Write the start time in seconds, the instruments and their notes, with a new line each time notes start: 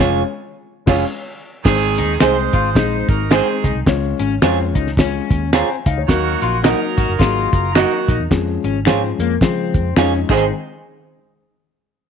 Already playing: upright piano G#3
0.00 fingered electric bass F1, upright piano C#4 F4 C#5, clean electric guitar F4 G#4 C#5, snare
0.86 fingered electric bass F1, upright piano G#3 C#4 F4 C#5, clean electric guitar F4 G#4 C#5, kick, snare, crash
1.64 fingered electric bass G#1, saxophone section D#3 C4 G#4, upright piano G#3 C4 D#4 C5, kick, snare, crash
1.98 fingered electric bass D#2, clean electric guitar D#4, closed hi-hat
2.19 fingered electric bass C2, saxophone section G#3 D#4 C5, upright piano G#3 C4 D#4 G#4, clean electric guitar C4 D#4 G#4 C5, finger snap, snare, closed hi-hat
2.53 fingered electric bass G#1, clean electric guitar F4, kick, closed hi-hat
2.75 fingered electric bass A#1, upright piano G#3 C4 D#4 G#4, clean electric guitar D#4, kick, snare, closed hi-hat
3.09 fingered electric bass G#1, saxophone section A#3 F#4 A#4, kick, closed hi-hat
3.31 saxophone section D#3 C4 G#4, upright piano G#3 C4 D#4 C5, clean electric guitar C4 D#4 G#4 C5, finger snap, snare, closed hi-hat
3.64 fingered electric bass C2, clean electric guitar D#4, kick, closed hi-hat
3.75 fingered electric bass C2
3.86 fingered electric bass C#2, upright piano G#3 C#4 F4 C#5, kick, snare, closed hi-hat
4.19 fingered electric bass G#1, clean electric guitar C#4, closed hi-hat
4.42 fingered electric bass F2, upright piano G#3 C#4 F4 C#5, clean electric guitar C4 F4 G#4 C#5, finger snap, snare, closed hi-hat
4.75 fingered electric bass C#2, clean electric guitar D#4, kick, closed hi-hat
4.87 snare
4.97 upright piano G#3 C#4 F4 C#5, clean electric guitar C#4, kick, snare, closed hi-hat
5.31 fingered electric bass D#2, kick, closed hi-hat
5.53 clean electric guitar C4 F4 G#4 C#5, upright piano A#5, finger snap, snare, closed hi-hat
5.69 upright piano G#5
5.86 fingered electric bass C#2, clean electric guitar D#4, upright piano F5, kick, closed hi-hat
5.98 fingered electric bass D2, upright piano C#5
6.08 fingered electric bass D#2, saxophone section D#3 A#3 F#4, upright piano F#3 A#3 D#4 A#4, kick, snare, closed hi-hat
6.42 fingered electric bass A#1, clean electric guitar F4, closed hi-hat
6.63 saxophone section F#3 D#4 A#4, upright piano F#3 A#3 D#4 A#4, clean electric guitar D#4 F#4 A#4 D#5, finger snap, snare, closed hi-hat
6.97 fingered electric bass G#1, clean electric guitar F#4, kick, closed hi-hat
7.09 fingered electric bass F#1
7.19 fingered electric bass G#1, upright piano F#3 A#3 D#4 G#4, clean electric guitar F4, kick, snare, closed hi-hat
7.52 fingered electric bass F#1, saxophone section F#3 D#4 A#4, kick, closed hi-hat
7.75 saxophone section D#3 A#3 F#4, upright piano F#3 A#3 D#4 A#4, clean electric guitar D#4 F#4 A#4 D#5, finger snap, snare, closed hi-hat
8.09 fingered electric bass A#1, clean electric guitar D#4, kick, closed hi-hat
8.20 fingered electric bass E2
8.30 fingered electric bass F2, upright piano F3 G#3 C#4 G#4, kick, snare, closed hi-hat
8.64 fingered electric bass G#1, clean electric guitar C#4, closed hi-hat
8.85 fingered electric bass G#2, upright piano F3 G#3 C#4 G#4, clean electric guitar C4 F4 G#4 C#5, finger snap, snare, closed hi-hat
9.19 fingered electric bass F2, clean electric guitar A#3, closed hi-hat
9.41 upright piano C#3 F3 G#3 G#4, fingered electric bass F3, clean electric guitar C4, kick, snare, closed hi-hat
9.74 fingered electric bass F2, kick, closed hi-hat
9.96 fingered electric bass F2, upright piano F3 G#3 C#4 D#4, clean electric guitar C#4 F4 G#4 C#5, finger snap, snare, closed hi-hat
10.29 fingered electric bass G#1, upright piano D#3 G#3 C4 G#4, saxophone section D#3 C4 G#4, clean electric guitar D#4 G#4 C5, finger snap, kick, crash